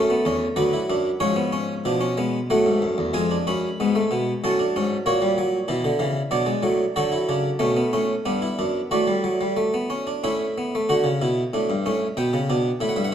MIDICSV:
0, 0, Header, 1, 2, 480
1, 0, Start_track
1, 0, Tempo, 638298
1, 913, Time_signature, 3, 2, 24, 8
1, 5718, Tempo, 659341
1, 8118, Tempo, 635593
1, 9814, End_track
2, 0, Start_track
2, 0, Title_t, "Harpsichord"
2, 0, Program_c, 0, 6
2, 0, Note_on_c, 0, 42, 76
2, 0, Note_on_c, 0, 57, 83
2, 0, Note_on_c, 0, 69, 80
2, 76, Note_on_c, 0, 59, 95
2, 101, Note_off_c, 0, 42, 0
2, 191, Note_on_c, 0, 40, 79
2, 192, Note_off_c, 0, 59, 0
2, 195, Note_on_c, 0, 61, 90
2, 340, Note_off_c, 0, 40, 0
2, 343, Note_off_c, 0, 61, 0
2, 417, Note_off_c, 0, 69, 0
2, 418, Note_off_c, 0, 57, 0
2, 423, Note_on_c, 0, 54, 70
2, 423, Note_on_c, 0, 71, 73
2, 425, Note_on_c, 0, 62, 88
2, 431, Note_on_c, 0, 38, 77
2, 546, Note_off_c, 0, 62, 0
2, 550, Note_on_c, 0, 64, 85
2, 580, Note_off_c, 0, 38, 0
2, 668, Note_off_c, 0, 64, 0
2, 673, Note_on_c, 0, 42, 80
2, 674, Note_on_c, 0, 62, 98
2, 822, Note_off_c, 0, 42, 0
2, 822, Note_off_c, 0, 62, 0
2, 893, Note_off_c, 0, 54, 0
2, 893, Note_off_c, 0, 71, 0
2, 904, Note_on_c, 0, 73, 78
2, 905, Note_on_c, 0, 61, 94
2, 906, Note_on_c, 0, 44, 75
2, 906, Note_on_c, 0, 53, 76
2, 1023, Note_on_c, 0, 59, 81
2, 1025, Note_off_c, 0, 61, 0
2, 1144, Note_off_c, 0, 59, 0
2, 1147, Note_on_c, 0, 61, 84
2, 1299, Note_off_c, 0, 61, 0
2, 1377, Note_off_c, 0, 44, 0
2, 1377, Note_off_c, 0, 53, 0
2, 1393, Note_on_c, 0, 47, 73
2, 1395, Note_on_c, 0, 53, 73
2, 1396, Note_on_c, 0, 62, 92
2, 1508, Note_on_c, 0, 61, 91
2, 1514, Note_off_c, 0, 62, 0
2, 1546, Note_off_c, 0, 53, 0
2, 1631, Note_off_c, 0, 61, 0
2, 1635, Note_on_c, 0, 56, 71
2, 1638, Note_on_c, 0, 59, 84
2, 1787, Note_off_c, 0, 56, 0
2, 1789, Note_off_c, 0, 59, 0
2, 1848, Note_off_c, 0, 73, 0
2, 1866, Note_off_c, 0, 47, 0
2, 1881, Note_on_c, 0, 54, 72
2, 1884, Note_on_c, 0, 45, 72
2, 1884, Note_on_c, 0, 57, 79
2, 1885, Note_on_c, 0, 78, 72
2, 2001, Note_off_c, 0, 45, 0
2, 2002, Note_on_c, 0, 44, 67
2, 2121, Note_off_c, 0, 44, 0
2, 2122, Note_on_c, 0, 42, 70
2, 2241, Note_on_c, 0, 40, 69
2, 2242, Note_off_c, 0, 42, 0
2, 2355, Note_off_c, 0, 54, 0
2, 2357, Note_off_c, 0, 57, 0
2, 2357, Note_off_c, 0, 78, 0
2, 2358, Note_on_c, 0, 41, 62
2, 2361, Note_on_c, 0, 65, 78
2, 2361, Note_on_c, 0, 80, 64
2, 2362, Note_on_c, 0, 56, 71
2, 2363, Note_off_c, 0, 40, 0
2, 2485, Note_off_c, 0, 65, 0
2, 2489, Note_on_c, 0, 62, 72
2, 2513, Note_off_c, 0, 41, 0
2, 2515, Note_off_c, 0, 80, 0
2, 2609, Note_off_c, 0, 62, 0
2, 2610, Note_on_c, 0, 42, 63
2, 2611, Note_on_c, 0, 83, 65
2, 2612, Note_on_c, 0, 61, 68
2, 2762, Note_off_c, 0, 42, 0
2, 2763, Note_off_c, 0, 61, 0
2, 2838, Note_off_c, 0, 56, 0
2, 2858, Note_on_c, 0, 44, 64
2, 2861, Note_on_c, 0, 59, 77
2, 2862, Note_on_c, 0, 56, 61
2, 2973, Note_on_c, 0, 57, 75
2, 2975, Note_off_c, 0, 59, 0
2, 3007, Note_off_c, 0, 44, 0
2, 3090, Note_on_c, 0, 47, 73
2, 3092, Note_off_c, 0, 57, 0
2, 3094, Note_on_c, 0, 59, 67
2, 3241, Note_off_c, 0, 47, 0
2, 3244, Note_off_c, 0, 59, 0
2, 3314, Note_off_c, 0, 83, 0
2, 3326, Note_off_c, 0, 56, 0
2, 3337, Note_on_c, 0, 45, 59
2, 3337, Note_on_c, 0, 54, 67
2, 3342, Note_on_c, 0, 61, 73
2, 3342, Note_on_c, 0, 81, 65
2, 3454, Note_on_c, 0, 62, 73
2, 3456, Note_off_c, 0, 61, 0
2, 3485, Note_off_c, 0, 45, 0
2, 3571, Note_off_c, 0, 62, 0
2, 3581, Note_on_c, 0, 44, 69
2, 3581, Note_on_c, 0, 61, 77
2, 3726, Note_off_c, 0, 44, 0
2, 3727, Note_off_c, 0, 61, 0
2, 3799, Note_off_c, 0, 54, 0
2, 3802, Note_off_c, 0, 81, 0
2, 3805, Note_on_c, 0, 58, 77
2, 3807, Note_on_c, 0, 46, 64
2, 3808, Note_on_c, 0, 73, 70
2, 3809, Note_on_c, 0, 66, 69
2, 3924, Note_off_c, 0, 58, 0
2, 3925, Note_on_c, 0, 55, 76
2, 4043, Note_off_c, 0, 55, 0
2, 4046, Note_on_c, 0, 54, 81
2, 4194, Note_off_c, 0, 54, 0
2, 4270, Note_off_c, 0, 46, 0
2, 4272, Note_off_c, 0, 66, 0
2, 4272, Note_on_c, 0, 64, 71
2, 4274, Note_on_c, 0, 52, 73
2, 4276, Note_on_c, 0, 47, 76
2, 4395, Note_on_c, 0, 50, 88
2, 4397, Note_off_c, 0, 52, 0
2, 4428, Note_off_c, 0, 47, 0
2, 4506, Note_on_c, 0, 52, 84
2, 4510, Note_on_c, 0, 49, 74
2, 4517, Note_off_c, 0, 50, 0
2, 4661, Note_off_c, 0, 52, 0
2, 4663, Note_off_c, 0, 49, 0
2, 4734, Note_off_c, 0, 73, 0
2, 4743, Note_off_c, 0, 64, 0
2, 4745, Note_on_c, 0, 47, 79
2, 4747, Note_on_c, 0, 74, 77
2, 4748, Note_on_c, 0, 54, 76
2, 4751, Note_on_c, 0, 62, 69
2, 4859, Note_on_c, 0, 56, 82
2, 4872, Note_off_c, 0, 54, 0
2, 4899, Note_off_c, 0, 47, 0
2, 4983, Note_on_c, 0, 45, 72
2, 4986, Note_off_c, 0, 56, 0
2, 4986, Note_on_c, 0, 54, 91
2, 5136, Note_off_c, 0, 45, 0
2, 5138, Note_off_c, 0, 54, 0
2, 5216, Note_off_c, 0, 74, 0
2, 5218, Note_off_c, 0, 62, 0
2, 5234, Note_on_c, 0, 69, 79
2, 5235, Note_on_c, 0, 54, 79
2, 5236, Note_on_c, 0, 66, 92
2, 5237, Note_on_c, 0, 50, 83
2, 5353, Note_off_c, 0, 66, 0
2, 5353, Note_on_c, 0, 64, 91
2, 5386, Note_off_c, 0, 50, 0
2, 5472, Note_off_c, 0, 64, 0
2, 5480, Note_on_c, 0, 49, 74
2, 5481, Note_on_c, 0, 62, 87
2, 5629, Note_off_c, 0, 49, 0
2, 5630, Note_off_c, 0, 62, 0
2, 5703, Note_off_c, 0, 54, 0
2, 5709, Note_on_c, 0, 57, 82
2, 5710, Note_on_c, 0, 47, 80
2, 5714, Note_on_c, 0, 61, 88
2, 5831, Note_off_c, 0, 61, 0
2, 5835, Note_on_c, 0, 59, 87
2, 5859, Note_off_c, 0, 47, 0
2, 5950, Note_off_c, 0, 59, 0
2, 5956, Note_on_c, 0, 61, 94
2, 5959, Note_on_c, 0, 45, 83
2, 6102, Note_off_c, 0, 61, 0
2, 6104, Note_off_c, 0, 45, 0
2, 6172, Note_off_c, 0, 57, 0
2, 6192, Note_on_c, 0, 59, 74
2, 6193, Note_on_c, 0, 62, 84
2, 6194, Note_on_c, 0, 43, 75
2, 6307, Note_off_c, 0, 62, 0
2, 6312, Note_on_c, 0, 64, 82
2, 6340, Note_off_c, 0, 43, 0
2, 6426, Note_off_c, 0, 64, 0
2, 6434, Note_on_c, 0, 62, 82
2, 6435, Note_on_c, 0, 42, 76
2, 6582, Note_off_c, 0, 42, 0
2, 6582, Note_off_c, 0, 62, 0
2, 6637, Note_off_c, 0, 69, 0
2, 6655, Note_off_c, 0, 59, 0
2, 6670, Note_on_c, 0, 57, 77
2, 6670, Note_on_c, 0, 66, 74
2, 6674, Note_on_c, 0, 45, 75
2, 6674, Note_on_c, 0, 74, 77
2, 6787, Note_off_c, 0, 57, 0
2, 6787, Note_on_c, 0, 55, 65
2, 6907, Note_off_c, 0, 55, 0
2, 6909, Note_on_c, 0, 54, 72
2, 7029, Note_off_c, 0, 54, 0
2, 7031, Note_on_c, 0, 55, 68
2, 7146, Note_on_c, 0, 57, 69
2, 7150, Note_off_c, 0, 55, 0
2, 7269, Note_off_c, 0, 57, 0
2, 7272, Note_on_c, 0, 59, 76
2, 7389, Note_on_c, 0, 61, 74
2, 7392, Note_off_c, 0, 59, 0
2, 7511, Note_off_c, 0, 61, 0
2, 7512, Note_on_c, 0, 62, 67
2, 7612, Note_off_c, 0, 66, 0
2, 7614, Note_off_c, 0, 45, 0
2, 7614, Note_off_c, 0, 74, 0
2, 7633, Note_off_c, 0, 62, 0
2, 7634, Note_on_c, 0, 64, 69
2, 7635, Note_on_c, 0, 61, 72
2, 7636, Note_on_c, 0, 45, 62
2, 7638, Note_on_c, 0, 76, 72
2, 7786, Note_off_c, 0, 61, 0
2, 7882, Note_on_c, 0, 59, 77
2, 7998, Note_off_c, 0, 59, 0
2, 8009, Note_on_c, 0, 57, 69
2, 8102, Note_off_c, 0, 64, 0
2, 8103, Note_off_c, 0, 45, 0
2, 8104, Note_off_c, 0, 76, 0
2, 8111, Note_on_c, 0, 66, 75
2, 8115, Note_on_c, 0, 50, 88
2, 8116, Note_on_c, 0, 78, 73
2, 8120, Note_off_c, 0, 57, 0
2, 8222, Note_on_c, 0, 49, 93
2, 8236, Note_off_c, 0, 50, 0
2, 8265, Note_off_c, 0, 66, 0
2, 8350, Note_off_c, 0, 49, 0
2, 8356, Note_on_c, 0, 47, 90
2, 8357, Note_on_c, 0, 64, 68
2, 8508, Note_off_c, 0, 47, 0
2, 8509, Note_off_c, 0, 64, 0
2, 8597, Note_on_c, 0, 45, 94
2, 8601, Note_on_c, 0, 62, 73
2, 8718, Note_off_c, 0, 45, 0
2, 8719, Note_on_c, 0, 43, 92
2, 8752, Note_off_c, 0, 62, 0
2, 8839, Note_off_c, 0, 43, 0
2, 8842, Note_on_c, 0, 61, 72
2, 8844, Note_on_c, 0, 45, 83
2, 8992, Note_off_c, 0, 61, 0
2, 8993, Note_off_c, 0, 45, 0
2, 9055, Note_off_c, 0, 78, 0
2, 9078, Note_on_c, 0, 47, 92
2, 9079, Note_on_c, 0, 79, 77
2, 9080, Note_on_c, 0, 59, 69
2, 9198, Note_off_c, 0, 47, 0
2, 9201, Note_on_c, 0, 49, 90
2, 9230, Note_off_c, 0, 59, 0
2, 9319, Note_off_c, 0, 49, 0
2, 9323, Note_on_c, 0, 62, 75
2, 9325, Note_on_c, 0, 47, 103
2, 9471, Note_off_c, 0, 62, 0
2, 9472, Note_off_c, 0, 47, 0
2, 9544, Note_off_c, 0, 79, 0
2, 9557, Note_on_c, 0, 45, 97
2, 9561, Note_on_c, 0, 76, 77
2, 9562, Note_on_c, 0, 64, 76
2, 9620, Note_on_c, 0, 78, 70
2, 9621, Note_off_c, 0, 76, 0
2, 9675, Note_off_c, 0, 45, 0
2, 9675, Note_on_c, 0, 76, 76
2, 9676, Note_on_c, 0, 43, 101
2, 9680, Note_off_c, 0, 78, 0
2, 9737, Note_off_c, 0, 76, 0
2, 9737, Note_on_c, 0, 78, 82
2, 9794, Note_off_c, 0, 43, 0
2, 9798, Note_off_c, 0, 78, 0
2, 9814, Note_off_c, 0, 64, 0
2, 9814, End_track
0, 0, End_of_file